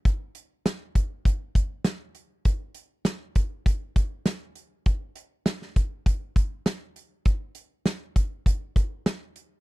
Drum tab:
HH |x-x-x-x-x-x-x-x-|x-x-x-x-x-x-x-x-|x-x-x-x-x-x-x-x-|x-x-x-x-x-x-x-x-|
SD |----o-------o---|----o-------o---|----oo------o---|----o-------o---|
BD |o-----o-o-o-----|o-----o-o-o-----|o-----o-o-o-----|o-----o-o-o-----|